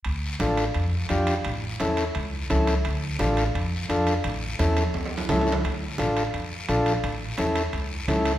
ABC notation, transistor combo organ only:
X:1
M:4/4
L:1/8
Q:1/4=172
K:Dm
V:1 name="Transistor combo organ"
z2 [DFA] z3 [DFG] z | z2 [^CEA] z3 [CEA] z | z2 [DFA] z3 [DFA] z | z2 [^CEA] z3 [CEA] z |
z2 [DFA] z3 [DFA] z | z2 [^CEA] z3 [CEA] z |]